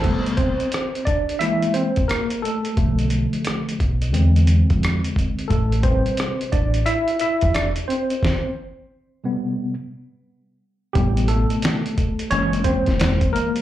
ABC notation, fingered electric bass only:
X:1
M:4/4
L:1/16
Q:"Swing 16ths" 1/4=88
K:Am
V:1 name="Fingered electric bass" clef=bass
z16 | B,,,3 z3 B,,,2 E,,3 F,,2 z3 | A,,,3 z3 A,,,2 z3 F,,,2 z3 | z16 |
A,,,3 z4 z ^F,,,3 E,,,2 z3 |]